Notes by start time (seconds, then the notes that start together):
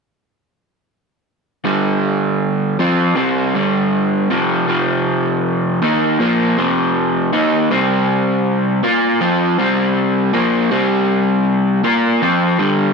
1.64 G2 D3 G3
2.79 F3 C4 F4
3.16 C3 G3 C4
3.54 G2 D3 G3
4.30 F2 C3 F3
4.68 F2 C3 F3
5.82 D#3 A#3 D#4
6.20 A#2 F3 A#3
6.57 F2 C3 F3
7.33 D#3 A#3 D#4
7.70 C3 G3 C4
8.83 A#3 F4 A#4
9.21 F3 C4 F4
9.58 C3 G3 C4
10.34 A#2 F3 A#3
10.72 C3 G3 C4
11.84 A#3 F4 A#4
12.22 F3 C4 F4
12.59 G2 D3 G3